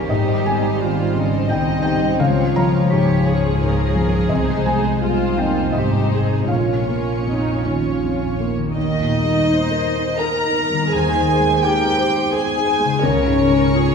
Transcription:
Already playing: felt piano A#1 D#2 F2 A#3 D#5 F5, harp A#2 A#3 C#4 A#4 D#5, viola section G3, cello section G4
0.09 double bass section G#1, harp G#2, felt piano G#2 D#5, violin section D#4 C5
0.46 harp G3, felt piano G3 G#5
0.80 felt piano D#3, violin section C4, harp D#4, cello section F4
1.15 felt piano C#3, cello section D#4, harp C6
1.49 double bass section C2, felt piano D#3 G5, harp D#4, cello section D#4, violin section D#5
1.82 harp G3, felt piano G3 G5
2.19 double bass section C#2, felt piano C#2 F5, harp C#3, viola section F3, cello section F4, violin section C#5
2.56 felt piano F3 A#5, harp G#3
2.90 felt piano G#2, violin section C#4 C#5, harp F4, cello section G4
3.25 violin section C#4, cello section G#4
3.59 felt piano G#2 C#5, harp F4, violin section A#4
3.94 felt piano F3, harp G#3
4.29 felt piano C2 D#5, double bass section C2, harp C3, viola section G#3, violin section D#4 C5
4.66 felt piano G#3 G#5
5.02 felt piano G3, viola section G#3, harp D#4, cello section F4, violin section F4 C5
5.36 felt piano F2 G5, viola section A#3, cello section D#4, harp D#5
5.72 double bass section G#1, felt piano G3 D#5, viola section C4, harp D#4, violin section D#4 C5, cello section G4
6.11 felt piano G#3, cello section G#4
6.48 double bass section A#1, felt piano A#1 F5, harp A#2, viola section A#3, violin section C#4 C#5, cello section F4
6.89 felt piano A#3, harp C#4
7.24 felt piano F2, viola section D#4, harp F4
7.62 felt piano D#2, viola section C#4, harp C#5
8.01 felt piano F2, viola section C#4, harp F4
8.38 viola section A#3, felt piano A#3, harp C#4
8.58 harp D#3
8.62 harp A#3
8.67 harp G4
8.71 double bass section D#2, cello section D#3, viola section D#4, harp D#5, violin section D#5
8.77 felt piano D#2
9.00 felt piano A#2
9.23 felt piano G3
9.46 felt piano D#4, violin section C5
9.71 felt piano A#4
9.96 felt piano D#4
10.19 viola section A#4, felt piano A#4, violin section A#4 A#5
10.46 felt piano D#4
10.69 felt piano G3
10.73 harp D#3
10.78 harp C4
10.82 harp D#4
10.87 viola section G#4, harp D#5, violin section G#5
10.91 double bass section D#2, felt piano D#2, cello section D#3, violin section C5
11.15 felt piano D#3
11.28 violin section C5
11.40 felt piano G#3
11.61 felt piano D#4, viola section G4, violin section A#4 G5
11.86 felt piano C5
11.98 violin section C5
12.08 felt piano D#4
12.32 viola section G#4, violin section G#4 G#5, felt piano C5
12.56 felt piano D#4
12.68 violin section C5
12.79 felt piano G#3
12.84 harp C#3
12.89 harp C#4
12.93 harp F4
12.98 cello section C#3, harp D#5
13.02 double bass section C#2, felt piano C#2, viola section C#4, violin section A#4 C#5
13.28 felt piano G#2
13.50 felt piano G#3
13.75 felt piano F4, violin section G#4

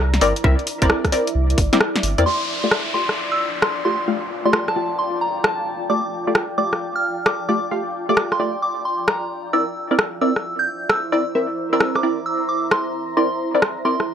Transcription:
Already playing: sub bass C2, ambient pad E4 D5 A#5
0.14 snare, closed hi-hat
0.21 sub bass G1, synth stab C4 E4 A#4 D5, open hi-hat
0.36 closed hi-hat
0.44 sub bass C2, synth stab C4 E4 A#4 E5, kick
0.59 closed hi-hat
0.67 open hi-hat
0.82 sub bass G1, synth stab C4 E4 A#4 D5, kick, closed hi-hat
0.90 cross-stick
1.05 kick, cross-stick, closed hi-hat
1.12 synth stab C4 E4 A#4 D5, open hi-hat
1.27 closed hi-hat
1.35 sub bass C2
1.50 closed hi-hat
1.58 sub bass G1, kick, open hi-hat
1.73 synth stab C4 E4 A#4 D5, snare, closed hi-hat
1.81 cross-stick
1.96 snare, closed hi-hat
2.03 sub bass G1, open hi-hat
2.18 sub bass E2, synth stab C4 E4 A#4 D5, closed hi-hat
2.26 synth stab A3 G4 D5, ambient pad F4, synth bell C6, downlifter
2.64 synth stab A3 F4 G4 D5
2.70 ambient pad G5, cross-stick
2.94 synth stab A3 F4 G4 D5, synth bell C6
3.09 ambient pad A5, cross-stick
3.32 synth bell E6
3.62 synth bell C6, cross-stick
3.85 synth stab A3 F4 G4 D5, synth bell C6
4.08 synth stab A3 F4 G4 F5
4.45 synth stab A3 F4 G4 D5, synth bell C6
4.53 cross-stick
4.68 synth bell A5, cross-stick
4.76 synth stab A3 F4 G4 D5
4.99 synth bell C6
5.21 synth bell A#5
5.44 synth bell A5, cross-stick
5.90 synth stab A3 F4 G4 D5, synth bell D6
6.27 synth stab A3 F4 G4 D5
6.35 cross-stick
6.58 synth stab A3 F4 G4 D5, synth bell D6
6.73 cross-stick
6.96 synth bell F6
7.26 synth bell D6, cross-stick
7.49 synth stab A3 F4 G4 D5, synth bell D6
7.71 synth stab A3 F4 G4 F5
8.09 synth stab A3 F4 G4 D5, synth bell D6
8.17 cross-stick
8.32 synth bell C6, cross-stick
8.40 synth stab A3 F4 G4 D5
8.62 synth bell D6
8.85 synth bell C6
9.08 synth bell A#5, cross-stick
9.53 synth stab C4 E4 A#4 D5, ambient pad E4, synth bell E6
9.81 ambient pad C5
9.91 synth stab C4 E4 A#4 D5
9.99 cross-stick
10.21 synth stab C4 E4 A#4 D5, ambient pad A#5, synth bell E6
10.36 cross-stick
10.59 synth bell G6
10.89 synth bell E6, cross-stick
11.12 synth stab C4 E4 A#4 D5, synth bell E6
11.35 synth stab C4 E4 A#4 E5
11.73 synth stab C4 E4 A#4 D5, synth bell E6
11.80 cross-stick
11.95 synth bell D6, cross-stick
12.03 synth stab C4 E4 A#4 D5
12.26 synth bell E6
12.49 synth bell D6
12.71 synth bell C6, cross-stick
13.17 synth stab C4 E4 A#4 D5, synth bell C6
13.54 synth stab C4 E4 A#4 D5
13.62 cross-stick
13.85 synth stab C4 E4 A#4 D5, synth bell C6
14.00 cross-stick

